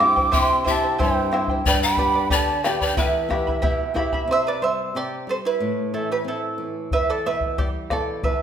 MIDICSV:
0, 0, Header, 1, 6, 480
1, 0, Start_track
1, 0, Tempo, 658617
1, 246, Time_signature, 2, 2, 24, 8
1, 6139, End_track
2, 0, Start_track
2, 0, Title_t, "Quena"
2, 0, Program_c, 0, 77
2, 0, Note_on_c, 0, 86, 99
2, 253, Note_off_c, 0, 86, 0
2, 253, Note_on_c, 0, 86, 91
2, 289, Note_on_c, 0, 84, 98
2, 296, Note_off_c, 0, 86, 0
2, 490, Note_off_c, 0, 84, 0
2, 511, Note_on_c, 0, 81, 91
2, 724, Note_off_c, 0, 81, 0
2, 741, Note_on_c, 0, 79, 89
2, 1070, Note_off_c, 0, 79, 0
2, 1217, Note_on_c, 0, 79, 94
2, 1324, Note_off_c, 0, 79, 0
2, 1339, Note_on_c, 0, 83, 102
2, 1669, Note_off_c, 0, 83, 0
2, 1701, Note_on_c, 0, 81, 95
2, 1937, Note_on_c, 0, 79, 85
2, 1948, Note_off_c, 0, 81, 0
2, 2053, Note_off_c, 0, 79, 0
2, 2064, Note_on_c, 0, 79, 84
2, 2169, Note_off_c, 0, 79, 0
2, 2187, Note_on_c, 0, 78, 72
2, 2221, Note_on_c, 0, 76, 79
2, 2229, Note_off_c, 0, 78, 0
2, 2869, Note_off_c, 0, 76, 0
2, 6139, End_track
3, 0, Start_track
3, 0, Title_t, "Charango"
3, 0, Program_c, 1, 24
3, 0, Note_on_c, 1, 64, 57
3, 0, Note_on_c, 1, 72, 62
3, 0, Note_on_c, 1, 76, 52
3, 0, Note_on_c, 1, 79, 65
3, 108, Note_off_c, 1, 79, 0
3, 115, Note_off_c, 1, 72, 0
3, 117, Note_off_c, 1, 76, 0
3, 117, Note_on_c, 1, 79, 51
3, 118, Note_off_c, 1, 64, 0
3, 123, Note_on_c, 1, 72, 50
3, 132, Note_on_c, 1, 64, 47
3, 222, Note_off_c, 1, 72, 0
3, 228, Note_off_c, 1, 64, 0
3, 230, Note_off_c, 1, 79, 0
3, 230, Note_on_c, 1, 67, 75
3, 231, Note_on_c, 1, 72, 84
3, 232, Note_on_c, 1, 76, 81
3, 237, Note_on_c, 1, 64, 72
3, 239, Note_on_c, 1, 79, 86
3, 461, Note_off_c, 1, 76, 0
3, 463, Note_off_c, 1, 64, 0
3, 464, Note_off_c, 1, 72, 0
3, 469, Note_off_c, 1, 79, 0
3, 469, Note_on_c, 1, 76, 62
3, 472, Note_on_c, 1, 64, 59
3, 473, Note_on_c, 1, 72, 62
3, 478, Note_on_c, 1, 79, 67
3, 479, Note_off_c, 1, 67, 0
3, 590, Note_off_c, 1, 79, 0
3, 596, Note_off_c, 1, 72, 0
3, 598, Note_off_c, 1, 76, 0
3, 598, Note_on_c, 1, 79, 57
3, 600, Note_off_c, 1, 64, 0
3, 604, Note_on_c, 1, 72, 49
3, 614, Note_on_c, 1, 64, 43
3, 716, Note_off_c, 1, 64, 0
3, 716, Note_off_c, 1, 79, 0
3, 717, Note_on_c, 1, 67, 80
3, 720, Note_off_c, 1, 72, 0
3, 722, Note_on_c, 1, 76, 80
3, 724, Note_on_c, 1, 64, 83
3, 725, Note_on_c, 1, 79, 96
3, 728, Note_on_c, 1, 72, 88
3, 958, Note_off_c, 1, 76, 0
3, 962, Note_off_c, 1, 67, 0
3, 965, Note_off_c, 1, 72, 0
3, 966, Note_off_c, 1, 64, 0
3, 966, Note_off_c, 1, 79, 0
3, 967, Note_on_c, 1, 76, 61
3, 974, Note_on_c, 1, 64, 65
3, 974, Note_on_c, 1, 72, 65
3, 974, Note_on_c, 1, 79, 66
3, 1080, Note_off_c, 1, 79, 0
3, 1087, Note_off_c, 1, 76, 0
3, 1089, Note_off_c, 1, 72, 0
3, 1089, Note_on_c, 1, 79, 55
3, 1091, Note_off_c, 1, 64, 0
3, 1098, Note_on_c, 1, 72, 50
3, 1101, Note_on_c, 1, 64, 46
3, 1208, Note_off_c, 1, 79, 0
3, 1213, Note_off_c, 1, 72, 0
3, 1215, Note_off_c, 1, 64, 0
3, 1216, Note_on_c, 1, 67, 70
3, 1218, Note_on_c, 1, 71, 79
3, 1219, Note_on_c, 1, 79, 70
3, 1223, Note_on_c, 1, 74, 84
3, 1225, Note_on_c, 1, 83, 92
3, 1434, Note_off_c, 1, 79, 0
3, 1437, Note_off_c, 1, 71, 0
3, 1437, Note_off_c, 1, 74, 0
3, 1443, Note_on_c, 1, 79, 63
3, 1445, Note_off_c, 1, 83, 0
3, 1446, Note_on_c, 1, 71, 63
3, 1446, Note_on_c, 1, 74, 58
3, 1452, Note_off_c, 1, 67, 0
3, 1454, Note_on_c, 1, 83, 63
3, 1550, Note_off_c, 1, 83, 0
3, 1559, Note_off_c, 1, 74, 0
3, 1559, Note_on_c, 1, 83, 53
3, 1561, Note_off_c, 1, 71, 0
3, 1566, Note_off_c, 1, 79, 0
3, 1568, Note_on_c, 1, 74, 53
3, 1570, Note_on_c, 1, 71, 50
3, 1675, Note_off_c, 1, 71, 0
3, 1675, Note_off_c, 1, 74, 0
3, 1679, Note_on_c, 1, 67, 75
3, 1682, Note_on_c, 1, 79, 78
3, 1684, Note_off_c, 1, 83, 0
3, 1684, Note_on_c, 1, 71, 74
3, 1684, Note_on_c, 1, 74, 87
3, 1691, Note_on_c, 1, 83, 89
3, 1910, Note_off_c, 1, 79, 0
3, 1915, Note_off_c, 1, 71, 0
3, 1917, Note_off_c, 1, 74, 0
3, 1918, Note_on_c, 1, 79, 57
3, 1919, Note_off_c, 1, 83, 0
3, 1924, Note_off_c, 1, 67, 0
3, 1924, Note_on_c, 1, 71, 64
3, 1926, Note_on_c, 1, 74, 65
3, 1928, Note_on_c, 1, 83, 61
3, 2035, Note_off_c, 1, 83, 0
3, 2040, Note_off_c, 1, 74, 0
3, 2043, Note_off_c, 1, 79, 0
3, 2044, Note_on_c, 1, 83, 55
3, 2046, Note_off_c, 1, 71, 0
3, 2048, Note_on_c, 1, 74, 49
3, 2058, Note_on_c, 1, 71, 44
3, 2161, Note_off_c, 1, 83, 0
3, 2162, Note_off_c, 1, 74, 0
3, 2164, Note_off_c, 1, 71, 0
3, 2165, Note_on_c, 1, 76, 85
3, 2165, Note_on_c, 1, 79, 76
3, 2166, Note_on_c, 1, 67, 70
3, 2167, Note_on_c, 1, 64, 81
3, 2169, Note_on_c, 1, 83, 87
3, 2395, Note_off_c, 1, 79, 0
3, 2399, Note_off_c, 1, 64, 0
3, 2401, Note_off_c, 1, 83, 0
3, 2403, Note_off_c, 1, 76, 0
3, 2404, Note_on_c, 1, 79, 58
3, 2407, Note_off_c, 1, 67, 0
3, 2408, Note_on_c, 1, 64, 58
3, 2410, Note_on_c, 1, 83, 60
3, 2412, Note_on_c, 1, 76, 65
3, 2520, Note_off_c, 1, 83, 0
3, 2524, Note_off_c, 1, 76, 0
3, 2526, Note_off_c, 1, 79, 0
3, 2528, Note_off_c, 1, 64, 0
3, 2528, Note_on_c, 1, 83, 48
3, 2533, Note_on_c, 1, 76, 46
3, 2538, Note_on_c, 1, 64, 40
3, 2629, Note_off_c, 1, 76, 0
3, 2633, Note_off_c, 1, 64, 0
3, 2633, Note_off_c, 1, 83, 0
3, 2637, Note_on_c, 1, 76, 88
3, 2637, Note_on_c, 1, 79, 76
3, 2642, Note_on_c, 1, 64, 79
3, 2642, Note_on_c, 1, 67, 74
3, 2642, Note_on_c, 1, 83, 93
3, 2867, Note_off_c, 1, 79, 0
3, 2871, Note_off_c, 1, 64, 0
3, 2876, Note_on_c, 1, 79, 59
3, 2879, Note_off_c, 1, 76, 0
3, 2880, Note_on_c, 1, 64, 72
3, 2881, Note_off_c, 1, 83, 0
3, 2885, Note_off_c, 1, 67, 0
3, 2888, Note_on_c, 1, 76, 70
3, 2890, Note_on_c, 1, 83, 68
3, 2999, Note_off_c, 1, 83, 0
3, 3002, Note_off_c, 1, 79, 0
3, 3004, Note_off_c, 1, 64, 0
3, 3008, Note_off_c, 1, 76, 0
3, 3008, Note_on_c, 1, 83, 60
3, 3017, Note_on_c, 1, 64, 52
3, 3017, Note_on_c, 1, 76, 53
3, 3128, Note_off_c, 1, 83, 0
3, 3133, Note_off_c, 1, 64, 0
3, 3133, Note_off_c, 1, 76, 0
3, 3141, Note_on_c, 1, 72, 68
3, 3152, Note_on_c, 1, 76, 89
3, 3247, Note_off_c, 1, 72, 0
3, 3256, Note_on_c, 1, 71, 65
3, 3264, Note_off_c, 1, 76, 0
3, 3266, Note_on_c, 1, 74, 80
3, 3365, Note_off_c, 1, 71, 0
3, 3369, Note_on_c, 1, 72, 64
3, 3370, Note_off_c, 1, 74, 0
3, 3379, Note_on_c, 1, 76, 83
3, 3592, Note_off_c, 1, 72, 0
3, 3617, Note_on_c, 1, 67, 63
3, 3621, Note_off_c, 1, 76, 0
3, 3621, Note_on_c, 1, 74, 88
3, 3836, Note_off_c, 1, 67, 0
3, 3857, Note_on_c, 1, 69, 61
3, 3862, Note_off_c, 1, 74, 0
3, 3867, Note_on_c, 1, 72, 81
3, 3894, Note_off_c, 1, 69, 0
3, 3903, Note_off_c, 1, 72, 0
3, 3974, Note_on_c, 1, 64, 64
3, 3983, Note_on_c, 1, 71, 84
3, 4306, Note_off_c, 1, 64, 0
3, 4311, Note_off_c, 1, 71, 0
3, 4327, Note_on_c, 1, 64, 54
3, 4330, Note_on_c, 1, 69, 64
3, 4439, Note_off_c, 1, 69, 0
3, 4440, Note_off_c, 1, 64, 0
3, 4457, Note_on_c, 1, 67, 57
3, 4462, Note_on_c, 1, 71, 78
3, 4493, Note_off_c, 1, 67, 0
3, 4498, Note_off_c, 1, 71, 0
3, 4577, Note_on_c, 1, 64, 61
3, 4579, Note_on_c, 1, 69, 66
3, 4907, Note_off_c, 1, 69, 0
3, 4908, Note_off_c, 1, 64, 0
3, 5051, Note_on_c, 1, 76, 87
3, 5054, Note_on_c, 1, 71, 66
3, 5163, Note_off_c, 1, 71, 0
3, 5172, Note_on_c, 1, 69, 63
3, 5173, Note_off_c, 1, 76, 0
3, 5176, Note_on_c, 1, 74, 69
3, 5282, Note_off_c, 1, 69, 0
3, 5283, Note_off_c, 1, 74, 0
3, 5294, Note_on_c, 1, 76, 80
3, 5298, Note_on_c, 1, 71, 62
3, 5514, Note_off_c, 1, 76, 0
3, 5516, Note_off_c, 1, 71, 0
3, 5526, Note_on_c, 1, 67, 65
3, 5529, Note_on_c, 1, 74, 74
3, 5590, Note_off_c, 1, 74, 0
3, 5592, Note_off_c, 1, 67, 0
3, 5764, Note_on_c, 1, 74, 77
3, 5776, Note_on_c, 1, 69, 60
3, 5993, Note_off_c, 1, 69, 0
3, 6004, Note_on_c, 1, 71, 63
3, 6007, Note_on_c, 1, 76, 61
3, 6011, Note_off_c, 1, 74, 0
3, 6139, Note_off_c, 1, 71, 0
3, 6139, Note_off_c, 1, 76, 0
3, 6139, End_track
4, 0, Start_track
4, 0, Title_t, "Pan flute"
4, 0, Program_c, 2, 75
4, 0, Note_on_c, 2, 79, 86
4, 240, Note_off_c, 2, 79, 0
4, 240, Note_on_c, 2, 79, 84
4, 484, Note_off_c, 2, 79, 0
4, 490, Note_on_c, 2, 76, 72
4, 712, Note_off_c, 2, 76, 0
4, 745, Note_on_c, 2, 72, 80
4, 1072, Note_off_c, 2, 72, 0
4, 1214, Note_on_c, 2, 74, 82
4, 1323, Note_off_c, 2, 74, 0
4, 1332, Note_on_c, 2, 79, 84
4, 1665, Note_off_c, 2, 79, 0
4, 1691, Note_on_c, 2, 74, 75
4, 1925, Note_off_c, 2, 74, 0
4, 1925, Note_on_c, 2, 74, 72
4, 2047, Note_off_c, 2, 74, 0
4, 2050, Note_on_c, 2, 74, 65
4, 2161, Note_off_c, 2, 74, 0
4, 2171, Note_on_c, 2, 71, 70
4, 2861, Note_off_c, 2, 71, 0
4, 6139, End_track
5, 0, Start_track
5, 0, Title_t, "Nylon-string guitar"
5, 0, Program_c, 3, 24
5, 0, Note_on_c, 3, 43, 66
5, 0, Note_on_c, 3, 60, 54
5, 1, Note_on_c, 3, 64, 50
5, 5, Note_on_c, 3, 67, 56
5, 227, Note_off_c, 3, 43, 0
5, 238, Note_on_c, 3, 48, 69
5, 386, Note_off_c, 3, 60, 0
5, 387, Note_off_c, 3, 64, 0
5, 390, Note_off_c, 3, 67, 0
5, 481, Note_on_c, 3, 60, 52
5, 489, Note_on_c, 3, 64, 45
5, 489, Note_on_c, 3, 67, 56
5, 708, Note_off_c, 3, 48, 0
5, 735, Note_on_c, 3, 43, 72
5, 868, Note_off_c, 3, 60, 0
5, 873, Note_off_c, 3, 64, 0
5, 873, Note_off_c, 3, 67, 0
5, 958, Note_on_c, 3, 60, 56
5, 963, Note_on_c, 3, 64, 48
5, 967, Note_on_c, 3, 67, 61
5, 1154, Note_off_c, 3, 60, 0
5, 1157, Note_off_c, 3, 64, 0
5, 1160, Note_off_c, 3, 67, 0
5, 1197, Note_off_c, 3, 43, 0
5, 1206, Note_on_c, 3, 43, 68
5, 1444, Note_on_c, 3, 59, 52
5, 1445, Note_on_c, 3, 62, 49
5, 1450, Note_on_c, 3, 67, 57
5, 1673, Note_off_c, 3, 43, 0
5, 1685, Note_on_c, 3, 50, 69
5, 1830, Note_off_c, 3, 62, 0
5, 1831, Note_off_c, 3, 59, 0
5, 1831, Note_off_c, 3, 67, 0
5, 1936, Note_on_c, 3, 59, 55
5, 1940, Note_on_c, 3, 62, 48
5, 1945, Note_on_c, 3, 67, 60
5, 2126, Note_off_c, 3, 59, 0
5, 2126, Note_off_c, 3, 62, 0
5, 2131, Note_off_c, 3, 67, 0
5, 2152, Note_off_c, 3, 50, 0
5, 2167, Note_on_c, 3, 40, 68
5, 2394, Note_on_c, 3, 59, 53
5, 2404, Note_on_c, 3, 64, 47
5, 2408, Note_on_c, 3, 67, 58
5, 2633, Note_off_c, 3, 40, 0
5, 2644, Note_on_c, 3, 47, 68
5, 2784, Note_off_c, 3, 59, 0
5, 2790, Note_off_c, 3, 64, 0
5, 2792, Note_off_c, 3, 67, 0
5, 2872, Note_on_c, 3, 59, 55
5, 2879, Note_on_c, 3, 64, 46
5, 2883, Note_on_c, 3, 67, 57
5, 3071, Note_off_c, 3, 59, 0
5, 3075, Note_off_c, 3, 64, 0
5, 3078, Note_off_c, 3, 67, 0
5, 3112, Note_off_c, 3, 47, 0
5, 3116, Note_on_c, 3, 48, 59
5, 3365, Note_on_c, 3, 55, 46
5, 3599, Note_off_c, 3, 48, 0
5, 3600, Note_off_c, 3, 55, 0
5, 3608, Note_on_c, 3, 48, 50
5, 3841, Note_off_c, 3, 48, 0
5, 3841, Note_on_c, 3, 55, 49
5, 4077, Note_off_c, 3, 55, 0
5, 4084, Note_on_c, 3, 45, 63
5, 4327, Note_on_c, 3, 52, 48
5, 4551, Note_on_c, 3, 60, 52
5, 4561, Note_off_c, 3, 52, 0
5, 4792, Note_off_c, 3, 60, 0
5, 4795, Note_on_c, 3, 52, 50
5, 5016, Note_off_c, 3, 45, 0
5, 5034, Note_off_c, 3, 52, 0
5, 5046, Note_on_c, 3, 40, 60
5, 5292, Note_on_c, 3, 47, 50
5, 5522, Note_off_c, 3, 47, 0
5, 5526, Note_on_c, 3, 55, 54
5, 5758, Note_off_c, 3, 55, 0
5, 5768, Note_on_c, 3, 47, 52
5, 5975, Note_off_c, 3, 40, 0
5, 5998, Note_off_c, 3, 47, 0
5, 6001, Note_on_c, 3, 40, 59
5, 6139, Note_off_c, 3, 40, 0
5, 6139, End_track
6, 0, Start_track
6, 0, Title_t, "Bombo"
6, 3, Note_on_c, 9, 37, 55
6, 76, Note_off_c, 9, 37, 0
6, 124, Note_on_c, 9, 43, 52
6, 196, Note_off_c, 9, 43, 0
6, 240, Note_on_c, 9, 43, 73
6, 313, Note_off_c, 9, 43, 0
6, 482, Note_on_c, 9, 43, 56
6, 555, Note_off_c, 9, 43, 0
6, 726, Note_on_c, 9, 43, 70
6, 799, Note_off_c, 9, 43, 0
6, 967, Note_on_c, 9, 37, 56
6, 1040, Note_off_c, 9, 37, 0
6, 1077, Note_on_c, 9, 43, 58
6, 1150, Note_off_c, 9, 43, 0
6, 1208, Note_on_c, 9, 43, 80
6, 1281, Note_off_c, 9, 43, 0
6, 1436, Note_on_c, 9, 43, 58
6, 1509, Note_off_c, 9, 43, 0
6, 1677, Note_on_c, 9, 43, 71
6, 1750, Note_off_c, 9, 43, 0
6, 1927, Note_on_c, 9, 37, 57
6, 2000, Note_off_c, 9, 37, 0
6, 2048, Note_on_c, 9, 43, 52
6, 2121, Note_off_c, 9, 43, 0
6, 2165, Note_on_c, 9, 43, 69
6, 2238, Note_off_c, 9, 43, 0
6, 2409, Note_on_c, 9, 37, 54
6, 2409, Note_on_c, 9, 43, 57
6, 2482, Note_off_c, 9, 37, 0
6, 2482, Note_off_c, 9, 43, 0
6, 2538, Note_on_c, 9, 43, 52
6, 2611, Note_off_c, 9, 43, 0
6, 2645, Note_on_c, 9, 43, 72
6, 2718, Note_off_c, 9, 43, 0
6, 2888, Note_on_c, 9, 37, 54
6, 2888, Note_on_c, 9, 43, 50
6, 2960, Note_off_c, 9, 37, 0
6, 2960, Note_off_c, 9, 43, 0
6, 3007, Note_on_c, 9, 43, 57
6, 3080, Note_off_c, 9, 43, 0
6, 5038, Note_on_c, 9, 43, 71
6, 5111, Note_off_c, 9, 43, 0
6, 5398, Note_on_c, 9, 43, 57
6, 5471, Note_off_c, 9, 43, 0
6, 5526, Note_on_c, 9, 43, 72
6, 5599, Note_off_c, 9, 43, 0
6, 5760, Note_on_c, 9, 37, 58
6, 5760, Note_on_c, 9, 43, 54
6, 5833, Note_off_c, 9, 37, 0
6, 5833, Note_off_c, 9, 43, 0
6, 6002, Note_on_c, 9, 43, 76
6, 6074, Note_off_c, 9, 43, 0
6, 6139, End_track
0, 0, End_of_file